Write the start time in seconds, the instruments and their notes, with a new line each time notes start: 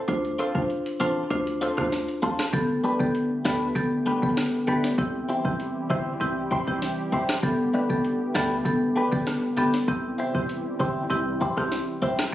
0.08 808-style bass D2, marimba D4 F4 C5, kick, closed hi-hat
0.25 closed hi-hat
0.39 clean electric guitar C4 F4 A4 C5, closed hi-hat
0.55 808-style bass B1, marimba D4 F4 C5, kick
0.70 closed hi-hat
0.86 closed hi-hat
1.00 808-style bass A1, clean electric guitar C4 F4 A4 C5, marimba D4 F4 C5, closed hi-hat
1.30 808-style bass D2, marimba D4 F4 C5, kick, closed hi-hat
1.47 closed hi-hat
1.61 clean electric guitar C4 F4 A4 C5, closed hi-hat
1.77 808-style bass D2, marimba D4 F4 C5, kick, cross-stick
1.92 snare, closed hi-hat
2.08 closed hi-hat
2.22 808-style bass D2, clean electric guitar C4 F4 A4 C5, kick, closed hi-hat
2.39 cross-stick, snare
2.53 808-style bass G1, analog synth pad D3 G3 A3 B3 G4, marimba B3 G4 A4, kick, closed hi-hat
2.84 clean electric guitar A3 D4 G4 B4
3.00 808-style bass G1, marimba B3 G4 A4, kick
3.15 closed hi-hat
3.45 808-style bass D2, clean electric guitar A3 D4 G4 B4, marimba B3 G4 A4, cross-stick, snare
3.75 808-style bass G1, marimba B3 G4 A4, kick, closed hi-hat
4.06 clean electric guitar A3 D4 G4 B4
4.22 808-style bass G1, marimba B3 G4 A4, kick
4.37 cross-stick, snare, closed hi-hat
4.67 808-style bass G1, clean electric guitar A3 D4 G4 B4, marimba B3 G4 A4
4.84 snare
4.98 808-style bass C2, analog synth pad C3 E3 E4, marimba C4 E4 G4, kick, closed hi-hat
5.29 clean electric guitar C4 E4 G4 C5
5.45 808-style bass A1, marimba C4 E4 G4, kick
5.60 closed hi-hat
5.90 808-style bass G1, clean electric guitar C4 E4 G4 C5, marimba C4 E4 G4, kick
6.20 808-style bass C2, marimba C4 E4 G4, closed hi-hat
6.51 clean electric guitar C4 E4 G4 C5, kick
6.67 808-style bass C2, marimba C4 E4 G4
6.82 snare, closed hi-hat
7.12 808-style bass C2, clean electric guitar C4 E4 G4 C5
7.29 cross-stick, snare
7.43 808-style bass G1, analog synth pad D3 A3 B3, marimba B3 G4 A4, kick, closed hi-hat
7.74 clean electric guitar A3 D4 G4 B4
7.90 808-style bass G1, marimba B3 G4 A4, kick
8.05 closed hi-hat
8.35 808-style bass D2, clean electric guitar A3 D4 G4 B4, marimba B3 G4 A4, cross-stick, snare
8.65 808-style bass G1, marimba B3 G4 A4, kick, closed hi-hat
8.96 clean electric guitar A3 D4 G4 B4
9.12 808-style bass G1, marimba B3 G4 A4, kick
9.27 cross-stick, snare, closed hi-hat
9.57 808-style bass G1, clean electric guitar A3 D4 G4 B4, marimba B3 G4 A4
9.74 snare
9.88 808-style bass C2, analog synth pad C3 E3 G3 E4, marimba C4 E4 G4, kick, closed hi-hat
10.18 clean electric guitar C4 E4 G4 C5
10.35 808-style bass A1, marimba C4 E4 G4, kick
10.49 closed hi-hat
10.80 808-style bass G1, marimba C4 E4 G4, clean electric guitar C4 E4 G4 C5, kick
11.10 808-style bass C2, marimba C4 E4 G4, closed hi-hat
11.41 clean electric guitar C4 E4 G4 C5, kick
11.57 808-style bass C2, marimba C4 E4 G4, cross-stick
11.72 snare, closed hi-hat
12.02 808-style bass C2, clean electric guitar C4 E4 G4 C5
12.19 cross-stick, snare